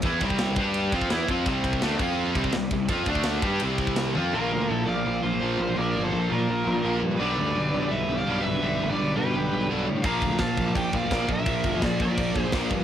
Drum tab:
CC |----------------|------x---------|----------------|----------------|
RD |x-x-x-x-x-x-x-x-|x-x-x-----x-x-x-|x-x-x-x-x-x-x---|----------------|
SD |----o-------o---|----o-------o---|----o-------o---|----------------|
T1 |----------------|----------------|--------------o-|----------------|
BD |o-oo--o---oo--o-|o-oo--o---oo--o-|o-oo--o---oo----|----------------|

CC |----------------|----------------|----------------|x-x-x-x-x-x-x-x-|
RD |----------------|----------------|----------------|----------------|
SD |----------------|----------------|----------------|----o-------o---|
T1 |----------------|----------------|----------------|----------------|
BD |----------------|----------------|----------------|o-o-o-o-o-o-o-o-|

CC |x-x-x-x-x-x-x-x-|
RD |----------------|
SD |----o-------o---|
T1 |----------------|
BD |o-o-o-o-o-o-o-o-|